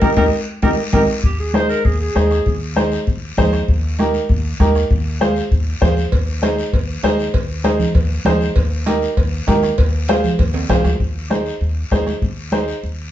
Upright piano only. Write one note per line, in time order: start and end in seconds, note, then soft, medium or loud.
0.02 0.12 D#4 medium
0.02 0.12 G4 medium
0.02 0.12 A#4 medium
0.17 0.27 D#4 loud
0.17 0.27 G4 medium
0.17 0.27 A#4 loud
0.62 0.73 D#4 medium
0.62 0.72 G4 loud
0.62 0.73 A#4 medium
0.93 1.03 D#4 loud
0.93 1.03 G4 loud
0.93 1.03 A#4 medium
1.54 1.76 D#4 medium
1.54 1.76 G#4 medium
1.54 1.76 C5 medium
2.15 2.37 D#4 medium
2.15 2.37 G#4 medium
2.15 2.37 C5 medium
2.76 2.98 D#4 medium
2.76 2.98 G#4 medium
2.76 2.98 C5 medium
3.38 3.59 D#4 medium
3.38 3.59 G#4 medium
3.38 3.59 C5 loud
3.99 4.20 D#4 medium
3.99 4.20 G4 medium
3.99 4.20 A#4 loud
4.60 4.81 D#4 medium
4.60 4.81 G4 medium
4.60 4.81 A#4 loud
5.20 5.42 F4 medium
5.20 5.42 G#4 medium
5.20 5.42 C5 medium
5.81 6.03 F4 medium
5.81 6.03 G#4 medium
5.81 6.03 C5 loud
6.42 6.64 D#4 medium
6.42 6.64 G#4 medium
6.42 6.64 C5 medium
7.04 7.25 D#4 medium
7.04 7.25 G#4 medium
7.04 7.25 C5 loud
7.64 7.86 D#4 medium
7.64 7.86 G#4 medium
7.64 7.86 C5 medium
8.25 8.47 D#4 medium
8.25 8.47 G#4 medium
8.25 8.47 C5 loud
8.86 9.08 D#4 medium
8.86 9.08 G4 medium
8.86 9.08 A#4 loud
9.47 9.69 D#4 medium
9.47 9.69 G4 medium
9.47 9.69 A#4 loud
10.09 10.30 F4 medium
10.09 10.30 G#4 medium
10.09 10.30 C5 loud
10.69 10.91 F4 medium
10.69 10.91 G#4 medium
10.69 10.91 C5 medium
11.30 11.52 D#4 medium
11.30 11.52 G#4 medium
11.30 11.52 C5 medium
11.91 12.13 D#4 medium
11.91 12.13 G#4 medium
11.91 12.13 C5 medium
12.52 12.74 D#4 medium
12.52 12.74 G#4 medium
12.52 12.74 C5 medium